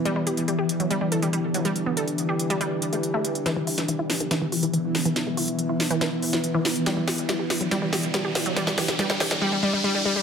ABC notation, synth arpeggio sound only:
X:1
M:4/4
L:1/16
Q:1/4=141
K:none
V:1 name="Synth arpeggio sound" clef=bass
G, G, G z G, G z ^F, G, G, A G, G, z F, G, | z B, A z2 G z G, G, z2 A, z A, z2 | E, E, E z E, E z ^D, E, E, F E, E, z D, E, | z ^G, F z2 E z E, E, z2 F, z E, z2 |
G, G, G z G, G z ^F, G, G, G z G, G z F, | G, G, G z G, G, G z G, G, G, G, G, G, G, G, |]